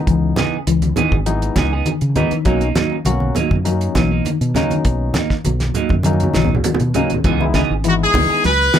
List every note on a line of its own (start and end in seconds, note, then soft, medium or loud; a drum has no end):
0.00 0.35 E3 medium
0.00 0.35 G#3 medium
0.00 0.35 B3 medium
0.00 0.35 D#4 medium
0.07 0.32 C#2 medium
0.07 0.31 E3 medium
0.07 kick medium
0.07 closed hi-hat medium
0.36 0.61 C#3 medium
0.36 0.56 E3 medium
0.36 0.56 B3 medium
0.36 0.57 D#4 medium
0.36 0.57 G#4 medium
0.36 snare medium
0.36 closed hi-hat medium
0.36 high conga medium
0.36 low conga medium
0.67 0.92 C#2 medium
0.67 0.90 E3 medium
0.67 closed hi-hat medium
0.82 closed hi-hat soft
0.82 high conga medium
0.96 1.20 D#3 medium
0.96 1.16 E3 medium
0.96 1.16 B3 medium
0.96 1.16 D#4 medium
0.96 1.16 G#4 medium
0.96 closed hi-hat soft
0.96 low conga medium
1.12 1.48 G#1 medium
1.12 kick medium
1.12 high conga medium
1.26 1.70 E3 medium
1.26 1.50 F#3 medium
1.26 1.70 G#3 medium
1.26 1.70 B3 medium
1.26 1.70 D#4 loud
1.26 closed hi-hat medium
1.42 closed hi-hat soft
1.56 1.81 C#2 medium
1.56 1.73 E3 medium
1.56 1.73 B3 medium
1.56 1.72 D#4 medium
1.56 1.72 G#4 medium
1.56 muted clean electric guitar stroke medium
1.56 kick medium
1.56 snare medium
1.56 closed hi-hat soft
1.56 high conga medium
1.56 low conga medium
1.73 1.91 B3 soft
1.73 1.91 D#4 soft
1.73 1.90 G#4 soft
1.86 2.10 D#3 medium
1.86 closed hi-hat medium
1.86 high conga medium
2.01 2.14 C#3 medium
2.01 closed hi-hat soft
2.16 2.29 D#3 medium
2.16 2.31 E3 medium
2.16 2.35 E3 medium
2.16 2.31 G#3 medium
2.16 2.31 B3 medium
2.16 2.35 B3 medium
2.16 2.32 D#4 medium
2.16 2.35 D#4 medium
2.16 muted clean electric guitar stroke medium
2.16 closed hi-hat soft
2.16 high conga medium
2.16 low conga medium
2.31 2.44 D#3 medium
2.31 muted fingered electric bass stroke soft
2.31 closed hi-hat soft
2.45 2.71 B1 medium
2.45 2.68 F#3 medium
2.45 2.70 F#3 medium
2.45 2.62 F#3 medium
2.45 2.68 A#3 medium
2.45 2.62 A#3 medium
2.45 2.68 C#4 medium
2.45 2.68 D#4 medium
2.45 2.61 D#4 medium
2.45 kick medium
2.45 closed hi-hat medium
2.61 2.76 A#3 soft
2.61 2.77 D#4 medium
2.61 closed hi-hat soft
2.75 3.00 D#3 medium
2.75 2.95 F#3 medium
2.75 2.95 A#3 medium
2.75 2.96 D#4 medium
2.75 snare medium
2.75 closed hi-hat soft
2.75 high conga medium
2.75 low conga medium
2.92 2.99 C#4 medium
2.92 2.99 D#4 loud
3.05 3.30 B1 medium
3.05 3.35 F#3 medium
3.05 3.30 F#3 medium
3.05 3.35 A#3 medium
3.05 3.35 C#4 medium
3.05 3.35 F#4 loud
3.05 closed hi-hat medium
3.05 high conga medium
3.20 high conga medium
3.35 3.60 D#3 medium
3.35 3.54 F#3 medium
3.35 3.55 A#3 medium
3.35 3.55 D#4 medium
3.35 closed hi-hat soft
3.35 low conga medium
3.51 3.87 F#2 medium
3.51 kick medium
3.51 high conga medium
3.65 4.09 F#3 medium
3.65 3.89 F#3 medium
3.65 4.09 A#3 medium
3.65 4.09 C#4 medium
3.65 4.09 D#4 medium
3.65 closed hi-hat medium
3.81 closed hi-hat soft
3.95 4.20 B1 medium
3.95 4.20 E3 medium
3.95 4.11 F#3 medium
3.95 4.11 A#3 medium
3.95 4.10 D#4 medium
3.95 kick medium
3.95 snare medium
3.95 closed hi-hat soft
3.95 high conga medium
3.95 low conga medium
4.11 4.29 A#3 soft
4.11 4.29 D#4 medium
4.25 4.49 D#3 medium
4.25 closed hi-hat medium
4.25 high conga medium
4.41 4.53 B2 medium
4.41 closed hi-hat soft
4.55 4.68 C#3 medium
4.55 4.74 F#3 medium
4.55 5.13 F#3 medium
4.55 4.74 A#3 medium
4.55 5.13 A#3 medium
4.55 5.14 C#4 medium
4.55 4.74 D#4 medium
4.55 5.13 D#4 medium
4.55 snare soft
4.55 closed hi-hat medium
4.55 high conga medium
4.55 low conga medium
4.70 4.83 D#3 medium
4.70 muted fingered electric bass stroke soft
4.70 closed hi-hat soft
4.70 high conga medium
4.85 5.10 B1 loud
4.85 muted clean electric guitar stroke medium
4.85 kick medium
4.85 closed hi-hat medium
5.14 5.39 D#3 medium
5.14 5.34 A#3 medium
5.14 5.35 D#4 medium
5.14 muted clean electric guitar stroke medium
5.14 snare medium
5.14 closed hi-hat medium
5.14 high conga medium
5.14 low conga medium
5.30 kick medium
5.30 snare soft
5.44 5.70 B1 medium
5.44 5.69 F#3 medium
5.44 closed hi-hat medium
5.44 high conga medium
5.60 snare soft
5.60 closed hi-hat soft
5.60 high conga medium
5.74 5.94 F#3 medium
5.74 5.94 A#3 medium
5.74 5.94 D#4 medium
5.74 closed hi-hat medium
5.74 low conga medium
5.89 6.27 F#2 medium
5.89 kick medium
5.89 high conga medium
6.03 6.49 F#3 medium
6.03 6.28 F#3 medium
6.03 6.49 A#3 medium
6.03 6.49 C#4 medium
6.03 6.49 D#4 medium
6.03 closed hi-hat medium
6.03 high conga loud
6.13 high conga medium
6.20 closed hi-hat soft
6.20 high conga medium
6.33 6.59 B1 medium
6.33 6.58 E3 medium
6.33 6.53 F#3 medium
6.33 6.54 D#4 medium
6.33 snare medium
6.33 closed hi-hat medium
6.33 high conga medium
6.44 low conga loud
6.55 low conga medium
6.64 6.88 D#3 medium
6.64 closed hi-hat medium
6.64 low conga medium
6.74 low conga medium
6.80 6.92 B2 medium
6.80 closed hi-hat soft
6.94 7.07 C#3 medium
6.94 7.13 F#3 medium
6.94 7.10 F#3 medium
6.94 7.13 A#3 medium
6.94 7.10 A#3 medium
6.94 7.10 C#4 medium
6.94 7.13 D#4 medium
6.94 7.10 D#4 medium
6.94 closed hi-hat soft
6.94 low conga medium
7.10 7.22 D#3 medium
7.10 muted fingered electric bass stroke soft
7.10 closed hi-hat soft
7.14 low conga medium
7.24 7.61 C#2 loud
7.24 7.43 E3 medium
7.24 7.48 E3 medium
7.24 7.43 B3 medium
7.24 7.43 D#4 medium
7.24 7.44 G#4 loud
7.24 kick medium
7.24 closed hi-hat medium
7.24 low conga medium
7.40 7.62 G#3 medium
7.40 7.62 B3 medium
7.40 7.61 D#4 medium
7.40 7.62 E4 loud
7.40 high conga medium
7.54 7.78 C#3 medium
7.54 7.73 E3 medium
7.54 7.72 B3 medium
7.54 7.73 D#4 medium
7.54 7.73 G#4 medium
7.54 kick medium
7.54 snare medium
7.54 closed hi-hat medium
7.54 high conga medium
7.70 8.06 G#1 medium
7.84 8.07 E3 medium
7.84 8.42 G#3 medium
7.84 8.42 B3 medium
7.84 8.42 D#4 medium
7.84 8.42 E4 medium
7.84 7.94 F#4 medium
7.84 closed hi-hat medium
8.03 8.43 G#4 medium
8.14 8.27 C#2 medium
8.14 8.37 D#3 medium
8.14 8.29 E3 medium
8.14 8.30 B3 medium
8.14 8.29 D#4 medium
8.14 8.29 G#4 medium
8.14 kick medium
8.14 open hi-hat medium
8.14 high conga medium
8.14 low conga medium
8.30 8.48 B3 soft
8.30 8.47 D#4 soft
8.30 8.47 G#4 medium
8.44 8.69 C#2 medium
8.44 8.67 F#3 medium
8.44 8.79 B4 loud
8.44 snare soft
8.44 closed hi-hat medium
8.74 8.79 E3 medium
8.74 8.79 B3 medium
8.74 8.79 D#4 medium
8.74 8.79 G#4 medium
8.74 snare medium
8.74 closed hi-hat medium
8.74 high conga medium